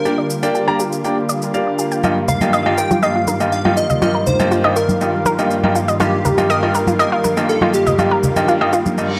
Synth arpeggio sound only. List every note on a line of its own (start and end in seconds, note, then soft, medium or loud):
0.05 0.10 G4 loud
0.18 0.23 D5 medium
0.55 0.63 G4 loud
0.68 0.76 G5 medium
0.80 0.88 G4 loud
1.29 1.38 D5 medium
1.79 1.87 G4 medium
1.92 2.00 G5 medium
2.04 2.12 F4 loud
2.28 2.37 A#4 medium
2.41 2.49 F4 medium
2.53 2.62 D#5 loud
2.66 2.74 F4 medium
2.78 2.90 A#4 medium
2.91 2.99 F4 medium
3.03 3.11 D#5 loud
3.16 3.20 F4 medium
3.28 3.36 A#4 medium
3.65 3.73 F4 loud
3.90 3.98 D#5 medium
4.02 4.07 F4 loud
4.15 4.20 A#4 medium
4.51 4.60 F4 medium
4.64 4.72 D#5 medium
4.76 4.85 F4 medium
5.26 5.34 A#4 loud
5.75 5.84 F4 medium
5.88 5.96 D#5 medium
6.00 6.09 F4 loud
6.25 6.34 A#4 medium
6.38 6.46 F4 medium
6.50 6.58 D#5 loud
6.63 6.71 F4 medium
6.75 6.87 A#4 medium
6.87 6.96 F4 medium
6.99 7.08 D#5 loud
7.12 7.17 F4 medium
7.24 7.33 A#4 medium
7.62 7.70 F4 medium
7.87 7.95 D#5 medium
7.99 8.04 F4 medium
8.11 8.16 A#4 medium
8.48 8.57 F4 loud
8.61 8.69 D#5 loud
8.73 8.82 F4 loud